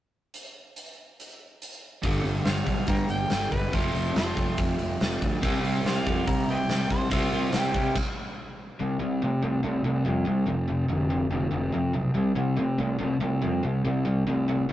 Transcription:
0.34 closed hi-hat
0.76 closed hi-hat
1.20 closed hi-hat
1.62 closed hi-hat
2.03 G1 G2 D3 G3, kick, open hi-hat
2.24 G1, open hi-hat
2.45 G1 C5 F5, snare, open hi-hat
2.66 B1, kick, open hi-hat
2.87 G2 F5 G5 A#5, kick, open hi-hat
3.09 G1 G5, open hi-hat
3.30 G1, snare, open hi-hat
3.51 G1 B4, kick, open hi-hat
3.72 F1 F2 C3 F3 F4, kick, open hi-hat
3.95 F1, open hi-hat
4.16 F1 F4, snare, open hi-hat
4.37 F1, kick, open hi-hat
4.57 F1, kick, open hi-hat
4.79 F1, open hi-hat
5.01 F1, snare, open hi-hat
5.22 D2, kick, open hi-hat
5.42 C2 C3 G3 C4, kick, open hi-hat
5.63 C2, open hi-hat
5.85 C2 C5 F5, snare, open hi-hat
6.07 F2, kick, open hi-hat
6.28 C3 A#5, kick, open hi-hat
6.47 C2 B4 D#5 G5, open hi-hat
6.68 C2, snare, open hi-hat
6.90 C2 C5, kick, open hi-hat
7.10 C2 C3 G3 C4 F4, kick, open hi-hat
7.32 C2, open hi-hat
7.53 C2 G4, snare, open hi-hat
7.74 C2, kick, open hi-hat
7.96 kick, crash
8.79 C2 C3 G3
8.99 C2 C3 G3
9.22 C3 A3
9.42 C2 C3 A3
9.63 C2 C3 A3
9.84 C2 C3 A3
10.05 F2 C3 G3
10.25 C2 C3 G3
10.46 F1 F2 C3
10.68 F2 C3
10.89 F1 F2 D3
11.10 F2 D3
11.30 F1 F2 D3
11.51 F1 F2 D3
11.73 F2 C3
11.93 B1 F2 C3
12.14 C2 C3 G3
12.35 C2 C3 G3
12.56 C3 A3
12.78 C2 C3 A3
12.99 C2 C3 A3
13.21 C2 C3 A3
13.42 F2 C3 G3
13.63 C2 C3 G3
13.85 C2 C3 G3
14.05 C3 G3
14.27 C2 C3 A3
14.48 C3 A3
14.69 C2 C3

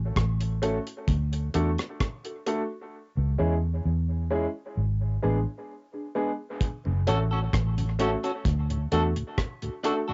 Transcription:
Already playing: A1
0.16 A1, kick, cross-stick, closed hi-hat
0.41 closed hi-hat
0.62 A3 C#4 F#4 A4, closed hi-hat
0.87 closed hi-hat
1.08 D2, kick, closed hi-hat
1.33 closed hi-hat
1.54 E2 A3 D4 F#4 A4, closed hi-hat
1.78 cross-stick, closed hi-hat
2.00 kick, cross-stick, closed hi-hat
2.25 F#4 A4, closed hi-hat
2.46 A3 D4 F#4 A4, closed hi-hat
3.17 C#2
3.38 E2 G#3 C#4 E4 G#4
3.85 E2
4.30 G#3 C#4 E4 G#4
4.77 G#1
5.22 A1 G#3 B3 D4 G#4
5.94 D4 G#4
6.15 G#3 B3 D4 G#4
6.61 kick, closed hi-hat
6.85 F#1 F#2 C#3
7.07 A1 A3 C#4 F#4 A4, closed hi-hat
7.31 C#4 F#4 A4
7.53 A1, kick, cross-stick, closed hi-hat
7.77 F#2 C#3, closed hi-hat
7.99 A3 C#4 F#4 A4, closed hi-hat
8.23 C#4 F#4 A4, closed hi-hat
8.45 D2, kick, closed hi-hat
8.70 D2 A2, closed hi-hat
8.92 E2 A3 D4 F#4 A4, closed hi-hat
9.16 D2 A2, closed hi-hat
9.38 kick, cross-stick, closed hi-hat
9.62 D2 A2 F#4 A4, closed hi-hat
9.83 A3 D4 F#4 A4, closed hi-hat
10.08 D2 A2 D4 F#4 A4

